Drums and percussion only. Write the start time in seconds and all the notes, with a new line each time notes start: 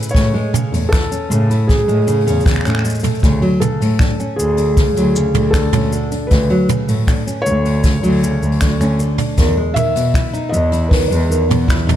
0.03 shaker
0.09 shaker
0.15 kick, open hi-hat, shaker
0.35 open hi-hat
0.54 mid tom, shaker
0.74 open hi-hat, shaker
0.93 finger snap, kick, open hi-hat, shaker
1.12 shaker
1.31 shaker
1.51 open hi-hat, shaker
1.69 kick, open hi-hat, shaker
1.88 open hi-hat, shaker
1.95 open hi-hat
2.01 open hi-hat
2.08 open hi-hat, shaker
2.14 open hi-hat
2.20 open hi-hat
2.27 open hi-hat, shaker
2.40 shaker
2.46 finger snap, kick, open hi-hat, shaker
2.51 finger snap
2.56 finger snap
2.61 finger snap
2.65 finger snap, open hi-hat, shaker
2.68 finger snap
2.70 finger snap
2.72 finger snap
2.75 finger snap
2.78 finger snap
2.81 finger snap
2.85 shaker
2.90 shaker
2.95 shaker
3.00 open hi-hat, shaker
3.04 mid tom, shaker
3.09 shaker
3.15 shaker
3.19 kick, shaker
3.24 open hi-hat, shaker
3.42 open hi-hat
3.61 mid tom, shaker
3.82 open hi-hat, shaker
3.99 finger snap, kick, open hi-hat, shaker
4.20 shaker
4.39 shaker
4.57 open hi-hat, shaker
4.77 kick, open hi-hat, shaker
4.96 open hi-hat, shaker
5.16 shaker
5.34 mid tom, open hi-hat, shaker
5.53 finger snap, kick, open hi-hat, shaker
5.73 mid tom, open hi-hat, shaker
5.93 shaker
6.12 open hi-hat, shaker
6.30 kick, open hi-hat, shaker
6.49 open hi-hat
6.69 mid tom, shaker
6.88 open hi-hat, shaker
7.07 finger snap, kick, open hi-hat, shaker
7.28 shaker
7.46 shaker
7.65 open hi-hat, shaker
7.84 kick, open hi-hat, shaker
8.02 open hi-hat, shaker
8.05 open hi-hat
8.07 open hi-hat
8.10 open hi-hat
8.12 open hi-hat
8.14 open hi-hat
8.16 open hi-hat
8.19 open hi-hat
8.24 shaker
8.43 shaker
8.52 open hi-hat
8.61 finger snap, kick, open hi-hat, shaker
8.80 finger snap, open hi-hat, shaker
9.00 shaker
9.18 mid tom, open hi-hat, shaker
9.38 kick, open hi-hat, shaker
9.76 mid tom, open hi-hat, shaker
9.96 open hi-hat, shaker
10.14 finger snap, kick, open hi-hat, shaker
10.34 shaker
10.54 shaker
10.72 open hi-hat, shaker
10.91 kick, open hi-hat
11.12 open hi-hat, shaker
11.32 shaker
11.50 mid tom, open hi-hat, shaker
11.68 finger snap, kick, open hi-hat, shaker
11.88 mid tom, open hi-hat, shaker